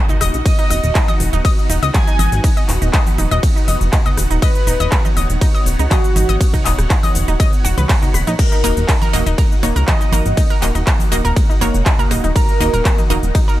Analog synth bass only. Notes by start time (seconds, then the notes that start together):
0.21 D#1
0.34 A#1
0.70 D#1
0.83 D#1
1.20 D#1
1.33 D#1
1.70 D#1
1.83 C#2
2.19 G#1
2.32 G#1
2.69 D#1
2.82 D#1
3.18 D#1
3.31 D#1
3.68 F1
3.81 F1
4.17 D#1
4.31 D#1
4.67 D#1
4.80 D#1
5.17 D#1
5.30 D#1
5.66 D#1
5.79 C#2
6.16 G#1
6.29 G#1
6.65 D#1
6.78 D#1
7.15 D#1
7.28 D#1
7.65 D#1
7.78 C#2
8.14 D#1
8.27 A#1
8.64 D#1
8.77 D#1
9.13 D#1
9.26 D#1
9.63 D#1
9.76 C#2
10.13 G#1
10.26 G#1
10.62 D#1
10.75 D#1
11.12 D#1
11.25 D#1
11.61 F1
11.74 F1
12.11 D#1
12.24 D#1
12.60 D#1
12.74 D#1
13.10 D#1
13.23 D#1